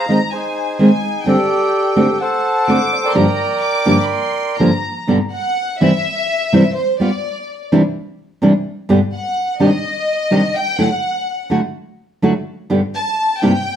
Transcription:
Already playing: F5 A#5
0.08 D#3 G#3 C4 D#5
0.31 D#4 G#4 C5 G#5
0.79 D#3 G#3 C4 G#5
1.25 D3 G3 C4 G4 A4 D5 G5
1.96 D3 A3 C4 F#4 G5
2.20 A4 C5 F#5 A5
2.68 D3 A3 C4 F#4 D6
2.93 D5
3.04 A#4 D5 G5
3.10 C6
3.15 G2 D3 F3 A#3 D4 G4 A#5
3.62 D6
3.86 G2 D3 F3 A#3 D4 G4
4.04 B5
4.10 C6
4.59 G2 D3 F3 A#3 D4 G4 A#5
5.07 G2 B2 D3 G3 B3 G4
5.33 F#5
5.81 C3 E3 G3 C4 E4 E5
6.53 C3 E3 G3 C4 E4
6.76 C5
7.00 G3 B3 F4 D5
7.72 C3 E3 G3 D4 E4
8.42 C3 E3 G3 D4 E4
8.89 G2 B2 D3 G3 B3 G4
9.14 F#5
9.60 C3 D#3 G3 D4 G4 D#5
10.31 C3 D#3 G3 D4 G4
10.56 G5
10.79 D3 F#3 A3 E4 F#4 F#5
11.50 D3 F#3 A3 E4 F#4
12.22 D3 F#3 A3 E4 F#4
12.70 G2 B2 D3 G3 B3 G4
12.95 A5
13.41 G2 C3 G3 A#3 E4 G4 G5

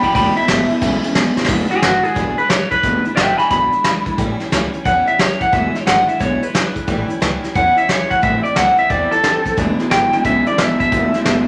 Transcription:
0.03 E1 E2 B2 E3 G#3 D4 E4 G5 B5, kick, ride
0.15 E1 E2 B2 E3 G#3 D4 E4 G5 B5, kick, snare, ride
0.36 E2 B2 E3 G#3 D4 E4 E5, muted upright bass stroke, ride
0.48 G#1 E2 B2 E3 G#3 D4 E4, snare, ride
0.69 E2 B2 E3 G#3 D4 E4, muted upright bass stroke, ride
0.81 B1 E2 B2 C#3 E3 G#3 D4 E4, kick, snare, ride
1.03 E2 C#3 E3 G#3 D4 E4, muted upright bass stroke, ride
1.15 G#1 E2 B2 E3 G#3 D4 E4, snare, ride
1.36 E1 E2 B2 E3 G#3 D4 E4, snare
1.44 E2, snare
1.49 E1 B2 E3 G#3 D4 E4, kick, crash
1.70 E3 G#3 D4 E4 G#4, muted upright bass stroke, snare, closed hi-hat
1.82 G#1 E3 G#3 D4 E4 F#4, snare, closed hi-hat
2.03 E3 G#3 D4 E4 G#4, muted upright bass stroke, closed hi-hat
2.15 B1 E2 B2 E3 G#3 D4 E4, kick, snare, closed hi-hat
2.37 E3 G#3 D4 E4 B4, muted upright bass stroke, closed hi-hat
2.49 G#1 E3 G#3 D4 E4 C#5, snare, closed hi-hat
2.71 E1 E3 G#3 D4 E4 B4, kick, closed hi-hat
2.83 E1 E2 B2 E3 G#3 D4 E4, kick, snare, closed hi-hat
3.04 E3 G#3 D4 E4, muted upright bass stroke, closed hi-hat
3.16 G#1 E3 G#3 D4 E4 E5 G5, snare, closed hi-hat
3.38 E3 G#3 D4 E4 G#5 B5, muted upright bass stroke, snare, closed hi-hat
3.50 B1 E2 B2 E3 G#3 D4 E4 B5, kick, snare, closed hi-hat
3.72 E3 G#3 D4 E4, muted upright bass stroke, closed hi-hat
3.84 G#1 E3 G#3 D4 E4, snare, closed hi-hat
4.06 E1 E3 G#3 D4 E4, kick, closed hi-hat
4.18 A1 A2 E3 G3 C#4 E4, kick, snare, closed hi-hat
4.40 G3 C#4 E4, muted upright bass stroke, snare, closed hi-hat
4.52 C#2 E3 G3 C#4 E4, snare, closed hi-hat
4.73 G3 C#4 E4, muted upright bass stroke, closed hi-hat
4.85 E2 A2 E3 G3 C#4 E4 F#5, kick, closed hi-hat
5.07 G3 C#4 E4 E5, muted upright bass stroke, closed hi-hat
5.19 C#2 E3 G3 C#4 E4 C#5, snare, closed hi-hat
5.41 A1 G3 C#4 E4 F#5, kick, closed hi-hat
5.52 E1 E2 B2 E3 G#3 D4 E4 E5, kick, snare, closed hi-hat
5.74 E3 G#3 D4 E4 C#5, muted upright bass stroke, snare, closed hi-hat
5.86 G#1 E3 G#3 D4 E4 F#5, snare, closed hi-hat
6.08 E3 G#3 D4 E4 E5, muted upright bass stroke, closed hi-hat
6.19 B1 E2 B2 E3 G#3 D4 E4 C#5, kick, snare, closed hi-hat
6.42 E3 G#3 D4 E4 B4, muted upright bass stroke, closed hi-hat
6.53 G#1 E3 G#3 D4 E4, snare, closed hi-hat
6.75 E1 E3 G#3 D4 E4, kick, closed hi-hat
6.87 A1 A2 E3 G3 C#4 E4, kick, snare, closed hi-hat
7.08 G3 C#4 E4, muted upright bass stroke, closed hi-hat
7.21 C#2 E3 G3 C#4 E4, snare, closed hi-hat
7.43 G3 C#4 E4, muted upright bass stroke, snare, closed hi-hat
7.55 E2 A2 E3 G3 C#4 E4 F#5, kick, snare, closed hi-hat
7.76 G3 C#4 E4 E5, muted upright bass stroke, closed hi-hat
7.88 C#2 E3 G3 C#4 E4 C#5, snare, closed hi-hat
8.10 A1 G3 C#4 E4 F#5, kick, closed hi-hat
8.22 A1 A2 E3 G3 C4 E4 E5, kick, closed hi-hat
8.43 G3 C4 E4 D5, closed hi-hat
8.55 C2 E3 G3 C4 E4 F#5, snare, closed hi-hat
8.77 G3 C4 E4 E5, muted upright bass stroke, closed hi-hat
8.89 E2 A2 E3 G3 C4 E4 D5, kick, closed hi-hat
9.11 G3 C4 E4 A4, muted upright bass stroke, closed hi-hat
9.23 C2 E3 G3 C4 E4, snare, closed hi-hat
9.45 F#1 G3 C4 E4, kick, closed hi-hat
9.57 E1 E2 B2 E3 G#3 D4 E4, kick, closed hi-hat
9.79 E2 B2 E3 G#3 D4 E4, muted upright bass stroke, snare, closed hi-hat
9.90 G#1 E2 B2 E3 G#3 D4 E4 G5, snare, closed hi-hat
10.12 E2 B2 E3 G#3 D4 E4, muted upright bass stroke, snare, closed hi-hat
10.24 B1 E2 B2 C#3 E3 G#3 D4 E4 E5, kick, closed hi-hat
10.46 E2 C#3 E3 G#3 D4 E4 D5, muted upright bass stroke, closed hi-hat
10.58 G#1 E2 B2 E3 G#3 D4 E4 E5, snare, closed hi-hat
10.80 E1 E2 B2 E3 G#3 D4 E4 E5, kick, closed hi-hat
10.91 E1 E2 B2 E3 G#3 D4 E4, kick, closed hi-hat
11.13 E2 B2 E3 G#3 D4 E4, muted upright bass stroke, snare, closed hi-hat
11.25 G#1 E2 B2 E3 G#3 D4 E4, snare, closed hi-hat

